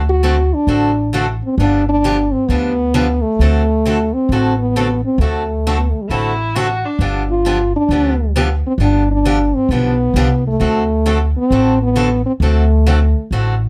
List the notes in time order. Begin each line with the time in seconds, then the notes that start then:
Already playing: D2
0.09 F#4
0.23 D3 A3 C4 F#4 A4
0.54 D4
0.67 A1 D3 A3 C4 F#4 A4
1.13 D3 A3 C4 F#4 A4
1.44 C4
1.58 G1 D3 F3 B3 D4 G4
1.89 D4
2.04 D3 F3 B3 D4 G4
2.32 C4
2.47 D2 D3 F3 B3 D4 G4
2.94 D3 F3 B3 D4 G4
3.22 A3
3.39 D2 D3 A3 C4 F#4 A4
3.86 D3 A3 C4 F#4 A4
4.14 C4
4.29 A1 D3 A3 C4 F#4 A4
4.58 B3
4.76 D3 A3 C4 F#4 A4
5.05 C4
5.18 D2 D3 A3 C4 F#4 A4
5.67 D3 A3 C4 F#4 A4
5.79 B3
5.91 A3
6.02 G3
6.08 A1 D3 A3 C4 E4 F#4 A4
6.55 D3 A3 C4 F#4 A4
6.85 D4
6.99 G1 D3 F3 B3 D4 G4
7.31 F4
7.45 D3 F3 B3 D4 G4
7.76 D4
7.89 D2 D3 F3 B3 D4 G4
8.36 D3 F3 B3 D4 G4
8.67 C4
8.78 G1 D3 F3 B3 D4 G4
8.82 D4
9.11 D4
9.25 D3 F3 B3 D4 G4
9.55 C4
9.69 B1 D3 F3 B3 D4 G4
10.14 C2 D3 F3 B3 D4 G4
10.47 A3
10.60 D2 D3 A3 C4 F#4 A4
11.06 D3 A3 C4 F#4 A4
11.37 C4
11.51 A1 D3 A3 C4 F#4 A4
11.83 B3
11.96 D3 A3 C4 F#4 A4
12.26 C4
12.40 D2 D3 A3 C4 F#4 A4
12.86 D3 A3 C4 F#4 A4
13.31 A1 D3 A3 C4 F#4 A4